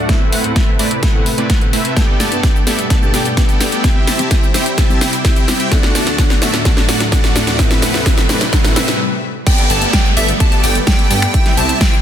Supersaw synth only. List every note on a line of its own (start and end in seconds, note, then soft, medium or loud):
0.09 0.30 A3 medium
0.09 0.30 C4 medium
0.09 0.30 E4 medium
0.09 0.30 B4 medium
0.09 0.30 E5 medium
0.33 0.53 A3 medium
0.33 0.53 C4 medium
0.33 0.53 E4 medium
0.33 0.53 B4 medium
0.33 0.53 F#5 loud
0.56 0.69 A3 medium
0.56 0.69 C4 medium
0.56 0.69 E4 medium
0.56 0.69 B4 medium
0.56 0.69 E5 loud
0.79 0.92 A3 loud
0.79 0.92 C4 medium
0.79 0.92 E4 medium
0.79 0.92 B4 medium
0.79 0.92 D5 loud
1.03 1.23 A3 medium
1.03 1.23 C4 medium
1.03 1.23 E4 medium
1.03 1.23 B4 medium
1.03 1.23 F#5 medium
1.38 1.47 A3 medium
1.38 1.47 C4 medium
1.38 1.47 E4 medium
1.38 1.47 B4 medium
1.38 1.47 D5 loud
1.50 1.63 A3 medium
1.50 1.63 C4 medium
1.50 1.63 E4 medium
1.50 1.63 B4 medium
1.50 1.63 F#5 medium
1.73 1.94 A3 medium
1.73 1.94 C4 medium
1.73 1.94 E4 medium
1.73 1.94 B4 medium
1.73 1.94 E5 medium
1.97 2.17 B3 medium
1.97 2.17 G4 medium
1.97 2.17 A4 medium
1.97 2.17 D5 medium
1.97 2.17 G5 medium
2.20 2.41 B3 medium
2.20 2.41 G4 medium
2.20 2.41 A4 medium
2.20 2.41 D5 medium
2.20 2.41 A5 loud
2.43 2.56 B3 medium
2.43 2.56 G4 medium
2.43 2.56 A4 medium
2.43 2.56 D5 medium
2.43 2.56 G5 loud
2.67 2.80 B3 loud
2.67 2.80 G4 medium
2.67 2.80 A4 medium
2.67 2.80 D5 medium
2.67 2.80 E5 loud
2.90 3.11 B3 medium
2.90 3.11 G4 medium
2.90 3.11 A4 medium
2.90 3.11 D5 medium
2.90 3.11 A5 medium
3.14 3.27 B3 medium
3.14 3.27 G4 medium
3.14 3.27 A4 medium
3.14 3.27 D5 medium
3.14 3.27 G5 medium
3.37 3.57 B3 medium
3.37 3.57 G4 medium
3.37 3.57 A4 medium
3.37 3.57 D5 medium
3.37 3.57 G5 medium
3.61 3.71 B3 medium
3.61 3.71 G4 medium
3.61 3.71 A4 medium
3.61 3.71 D5 medium
3.61 3.71 G5 medium
3.72 3.82 B3 medium
3.72 3.82 G4 medium
3.72 3.82 A4 medium
3.72 3.82 D5 medium
3.72 3.82 G5 medium
3.84 4.05 C4 medium
3.84 4.05 E4 medium
3.84 4.05 G4 medium
3.84 4.05 E5 medium
3.84 4.05 G5 loud
4.08 4.28 C4 medium
4.08 4.28 E4 medium
4.08 4.28 G4 medium
4.08 4.28 E5 medium
4.08 4.28 A5 loud
4.31 4.44 C4 medium
4.31 4.44 E4 medium
4.31 4.44 G4 medium
4.31 4.44 E5 medium
4.31 4.44 G5 loud
4.54 4.67 C4 loud
4.54 4.67 E4 medium
4.54 4.67 G4 medium
4.54 4.67 E5 medium
4.54 4.67 G5 loud
4.78 4.99 C4 medium
4.78 4.99 E4 medium
4.78 4.99 G4 medium
4.78 4.99 E5 medium
4.78 4.99 A5 medium
5.01 5.14 C4 medium
5.01 5.14 E4 medium
5.01 5.14 G4 medium
5.01 5.14 E5 medium
5.01 5.14 G5 medium
5.25 5.45 C4 medium
5.25 5.45 E4 medium
5.25 5.45 G4 medium
5.25 5.45 E5 medium
5.25 5.45 G5 medium
5.48 5.58 C4 medium
5.48 5.58 E4 medium
5.48 5.58 G4 medium
5.48 5.58 E5 medium
5.48 5.58 G5 medium
5.60 5.70 C4 medium
5.60 5.70 E4 medium
5.60 5.70 G4 medium
5.60 5.70 E5 medium
5.60 5.70 G5 medium
5.72 5.92 A3 medium
5.72 5.92 D4 medium
5.72 5.92 F#4 medium
5.72 5.92 D5 medium
5.72 5.92 F#5 medium
5.95 6.16 A3 medium
5.95 6.16 D4 medium
5.95 6.16 F#4 medium
5.95 6.16 D5 medium
5.95 6.16 A5 loud
6.19 6.32 A3 medium
6.19 6.32 D4 medium
6.19 6.32 F#4 medium
6.19 6.32 D5 medium
6.19 6.31 F#5 loud
6.42 6.55 A3 loud
6.42 6.55 D4 medium
6.42 6.55 F#4 medium
6.42 6.55 D5 medium
6.42 6.55 E5 loud
6.65 6.86 A3 medium
6.65 6.86 D4 medium
6.65 6.86 F#4 medium
6.65 6.86 D5 medium
6.65 6.86 A5 medium
6.89 7.02 A3 medium
6.89 7.02 D4 medium
6.89 7.02 F#4 medium
6.89 7.02 D5 medium
6.89 7.02 F#5 medium
7.12 7.32 A3 medium
7.12 7.32 D4 medium
7.12 7.32 F#4 medium
7.12 7.32 D5 medium
7.12 7.32 F#5 loud
7.36 7.46 A3 medium
7.36 7.46 D4 medium
7.36 7.46 F#4 medium
7.36 7.46 D5 medium
7.36 7.46 F#5 medium
7.47 7.57 A3 medium
7.47 7.57 D4 medium
7.47 7.57 F#4 medium
7.47 7.57 D5 medium
7.47 7.57 F#5 medium
7.59 7.80 A3 medium
7.59 7.80 C4 medium
7.59 7.80 E4 medium
7.59 7.80 B4 medium
7.59 7.80 E5 loud
7.82 8.03 A3 medium
7.82 8.03 C4 medium
7.82 8.03 E4 medium
7.82 8.03 B4 medium
7.82 8.03 F#5 loud
8.06 8.19 A3 medium
8.06 8.19 C4 medium
8.06 8.19 E4 medium
8.06 8.19 B4 medium
8.06 8.19 E5 loud
8.29 8.42 A3 loud
8.29 8.42 C4 medium
8.29 8.42 E4 medium
8.29 8.42 B4 medium
8.29 8.42 D5 loud
8.53 8.73 A3 medium
8.53 8.73 C4 medium
8.53 8.73 E4 medium
8.53 8.73 B4 medium
8.53 8.73 F#5 medium
8.76 8.89 A3 medium
8.76 8.89 C4 medium
8.76 8.89 E4 medium
8.76 8.89 B4 medium
8.76 8.89 E5 medium
9.46 9.67 B3 medium
9.46 9.67 G4 medium
9.46 9.67 A4 medium
9.46 9.67 D5 medium
9.46 9.67 G5 loud
9.70 9.91 B3 medium
9.70 9.91 G4 medium
9.70 9.91 A4 medium
9.70 9.91 D5 medium
9.70 9.91 A5 loud
9.93 10.06 B3 medium
9.93 10.06 G4 medium
9.93 10.06 A4 medium
9.93 10.06 D5 medium
9.93 10.06 G5 loud
10.17 10.30 B3 loud
10.17 10.30 G4 medium
10.17 10.30 A4 medium
10.17 10.30 D5 loud
10.17 10.30 E5 loud
10.40 10.61 B3 medium
10.40 10.61 G4 medium
10.40 10.61 A4 medium
10.40 10.61 D5 medium
10.40 10.61 A5 medium
10.64 10.77 B3 medium
10.64 10.77 G4 medium
10.64 10.77 A4 medium
10.64 10.77 D5 medium
10.64 10.77 G5 medium
10.87 11.07 B3 medium
10.87 11.07 G4 medium
10.87 11.07 A4 medium
10.87 11.07 D5 medium
10.87 11.07 G5 medium
11.11 11.21 B3 medium
11.11 11.21 G4 medium
11.11 11.21 A4 medium
11.11 11.21 D5 medium
11.11 11.21 G5 medium
11.22 11.32 B3 medium
11.22 11.32 G4 medium
11.22 11.32 A4 medium
11.22 11.32 D5 medium
11.22 11.32 G5 medium
11.34 11.55 C4 medium
11.34 11.55 E4 medium
11.34 11.55 G4 medium
11.34 11.55 E5 medium
11.34 11.55 G5 loud
11.57 11.78 C4 medium
11.57 11.78 E4 medium
11.57 11.78 G4 medium
11.57 11.78 E5 medium
11.57 11.78 A5 loud
11.81 11.94 C4 medium
11.81 11.94 E4 medium
11.81 11.94 G4 medium
11.81 11.94 E5 medium
11.81 11.94 G5 loud